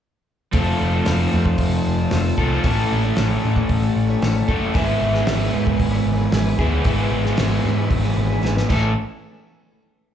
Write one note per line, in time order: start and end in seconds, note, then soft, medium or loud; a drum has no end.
0.53 0.72 F1 medium
0.53 0.67 F3 medium
0.53 0.67 A3 medium
0.53 0.67 C4 medium
0.53 0.66 F4 medium
0.53 0.65 C5 medium
0.53 kick loud
0.53 open hi-hat medium
0.57 2.37 A4 medium
0.66 0.78 C4 soft
0.66 0.79 F4 soft
0.66 0.80 C5 medium
0.78 0.99 F1 medium
0.78 0.93 A3 medium
0.78 0.93 C4 medium
0.78 0.92 F4 medium
0.78 0.91 C5 medium
0.92 1.05 C4 soft
0.92 1.05 F4 medium
0.92 1.07 C5 medium
1.05 1.26 F1 medium
1.05 1.33 F3 medium
1.05 1.29 A3 medium
1.05 1.31 C4 medium
1.05 1.32 F4 medium
1.05 1.32 C5 medium
1.05 snare loud
1.05 open hi-hat medium
1.30 1.52 F2 medium
1.30 1.45 A3 medium
1.30 1.46 C4 medium
1.30 1.45 F4 medium
1.30 1.43 C5 medium
1.44 1.74 C4 soft
1.44 1.72 F4 soft
1.44 1.71 C5 medium
1.44 kick medium
1.58 1.77 F1 medium
1.58 kick medium
1.58 open hi-hat medium
1.72 2.00 C4 soft
1.72 1.99 F4 soft
1.72 1.97 C5 medium
1.86 2.05 F1 medium
1.98 2.12 C4 soft
1.98 2.12 F4 medium
1.98 2.12 C5 medium
2.11 2.31 F1 medium
2.11 2.26 F3 medium
2.11 2.26 A3 medium
2.11 2.26 C4 medium
2.11 2.25 F4 medium
2.11 2.24 C5 medium
2.11 snare loud
2.11 open hi-hat medium
2.25 2.37 C4 soft
2.25 2.38 F4 medium
2.25 2.38 C5 medium
2.37 2.56 C2 medium
2.37 2.63 A3 medium
2.37 2.64 C4 medium
2.37 2.64 F4 medium
2.37 2.63 A4 medium
2.37 2.64 C5 medium
2.37 kick medium
2.41 2.63 F3 medium
2.63 2.83 A1 medium
2.63 2.91 A2 medium
2.63 2.91 E3 medium
2.63 2.88 A3 medium
2.63 2.89 C#4 medium
2.63 2.90 E4 medium
2.63 4.48 A4 medium
2.63 2.91 C#5 loud
2.63 kick loud
2.63 open hi-hat medium
2.89 3.10 A1 medium
2.89 3.04 A3 medium
2.89 3.04 C#4 medium
2.89 3.03 E4 medium
2.89 3.02 C#5 medium
3.03 3.16 A3 soft
3.03 3.16 C#4 medium
3.03 3.16 E4 medium
3.03 3.17 C#5 medium
3.15 3.36 A1 medium
3.15 3.43 A2 medium
3.15 3.43 E3 medium
3.15 3.40 A3 medium
3.15 3.41 C#4 medium
3.15 3.43 E4 medium
3.15 3.44 C#5 medium
3.15 snare loud
3.15 open hi-hat medium
3.41 3.63 A2 medium
3.41 3.56 A3 medium
3.41 3.56 C#4 medium
3.41 3.55 E4 medium
3.41 3.54 C#5 medium
3.55 3.83 A3 soft
3.55 3.83 C#4 medium
3.55 3.82 E4 medium
3.55 3.81 C#5 medium
3.55 kick medium
3.69 3.88 A1 medium
3.69 kick loud
3.69 open hi-hat medium
3.82 4.10 A3 soft
3.82 4.09 C#4 soft
3.82 4.09 E4 medium
3.82 4.08 C#5 medium
3.96 4.15 A1 medium
4.09 4.21 A3 soft
4.09 4.22 C#4 medium
4.09 4.22 E4 medium
4.09 4.22 C#5 medium
4.22 4.41 A1 medium
4.22 4.36 A2 medium
4.22 4.36 E3 medium
4.22 4.36 A3 medium
4.22 4.35 C#4 medium
4.22 4.35 E4 medium
4.22 4.33 C#5 medium
4.22 snare loud
4.22 open hi-hat soft
4.35 4.47 A3 soft
4.35 4.48 C#4 soft
4.35 4.49 E4 medium
4.35 4.48 C#5 medium
4.48 4.67 F#1 medium
4.48 4.73 A3 medium
4.48 4.74 C#4 medium
4.48 4.73 E4 medium
4.48 4.74 A4 medium
4.48 4.75 C#5 medium
4.48 kick medium
4.53 4.76 A2 medium
4.74 4.93 G#1 medium
4.74 6.58 G#2 medium
4.74 6.62 E3 medium
4.74 4.88 G#3 medium
4.74 4.88 E4 medium
4.74 4.87 G#4 medium
4.74 4.86 B4 medium
4.74 5.52 E5 loud
4.74 kick loud
4.74 open hi-hat medium
4.78 6.59 B3 medium
4.78 6.60 E4 loud
4.78 6.58 G#4 loud
4.87 5.00 E4 soft
4.87 5.00 G#4 soft
4.87 5.01 B4 medium
5.00 5.20 G#1 medium
5.00 5.14 G#3 medium
5.00 5.14 E4 medium
5.00 5.14 G#4 medium
5.00 5.12 B4 medium
5.14 5.26 E4 soft
5.14 5.27 G#4 medium
5.14 5.27 B4 medium
5.14 snare soft
5.27 5.46 G#1 medium
5.27 5.52 G#3 medium
5.27 5.53 E4 medium
5.27 5.54 G#4 medium
5.27 5.54 B4 medium
5.27 snare loud
5.27 open hi-hat medium
5.53 5.72 G#2 medium
5.53 5.67 G#3 medium
5.53 5.67 E4 medium
5.53 5.66 G#4 medium
5.53 5.64 B4 medium
5.53 5.66 C#5 medium
5.65 5.94 E4 soft
5.65 5.93 G#4 medium
5.65 5.91 B4 medium
5.65 5.93 B4 medium
5.65 kick medium
5.80 5.98 G#1 medium
5.80 kick medium
5.80 open hi-hat medium
5.92 6.20 E4 soft
5.92 6.18 G#4 medium
5.92 6.16 B4 medium
5.92 6.06 C#5 medium
6.06 6.25 G#1 medium
6.06 6.33 B4 medium
6.18 6.32 E4 medium
6.18 6.33 G#4 medium
6.18 6.32 B4 medium
6.32 6.51 G#1 medium
6.32 6.46 G#3 medium
6.32 6.46 E4 medium
6.32 6.46 G#4 medium
6.32 7.36 G#4 medium
6.32 6.44 B4 medium
6.32 snare loud
6.32 open hi-hat medium
6.45 6.58 E4 soft
6.45 6.59 G#4 medium
6.45 6.59 B4 medium
6.58 6.77 D2 medium
6.58 6.86 E3 medium
6.58 6.84 G#3 medium
6.58 6.84 B3 medium
6.58 6.85 E4 medium
6.58 6.86 G#4 medium
6.58 6.86 B4 medium
6.58 kick medium
6.62 6.84 G#2 medium
6.84 7.03 G#1 medium
6.84 8.68 G#2 medium
6.84 8.68 E3 medium
6.84 7.09 G#3 medium
6.84 8.69 B3 medium
6.84 7.10 E4 medium
6.84 7.11 G#4 medium
6.84 7.12 B4 medium
6.84 kick loud
6.84 open hi-hat medium
7.11 7.30 G#1 medium
7.11 7.24 G#3 medium
7.11 7.25 E4 medium
7.11 7.24 G#4 medium
7.11 7.22 B4 medium
7.23 7.36 E4 soft
7.23 7.36 G#4 medium
7.23 7.37 B4 medium
7.23 snare soft
7.36 7.57 G#1 loud
7.36 7.62 G#3 medium
7.36 7.63 E4 medium
7.36 7.64 G#4 medium
7.36 7.64 B4 medium
7.36 snare loud
7.36 open hi-hat medium
7.63 7.83 G#2 medium
7.63 7.77 G#3 medium
7.63 7.78 E4 medium
7.63 7.77 G#4 medium
7.63 7.75 B4 medium
7.77 8.05 E4 soft
7.77 8.04 G#4 medium
7.77 8.02 B4 medium
7.91 8.09 G#1 loud
7.91 kick loud
7.91 open hi-hat medium
8.03 8.31 E4 soft
8.03 8.30 G#4 medium
8.03 8.28 B4 medium
8.17 8.36 G#1 medium
8.29 8.42 E4 medium
8.29 8.42 G#4 medium
8.29 8.43 B4 medium
8.42 8.62 G#1 medium
8.42 8.56 G#3 medium
8.42 8.56 E4 medium
8.42 8.56 G#4 medium
8.42 8.55 B4 medium
8.42 snare medium
8.56 8.71 E4 soft
8.56 8.70 G#4 medium
8.56 8.69 B4 medium
8.56 snare medium
8.69 8.94 A1 loud
8.69 8.91 A2 medium
8.69 8.91 E3 medium
8.69 8.91 A3 medium
8.69 8.92 C#4 medium
8.69 8.92 E4 loud
8.69 8.95 A4 medium
8.69 8.92 A4 loud
8.69 8.92 C#5 loud
8.69 kick loud
8.69 crash medium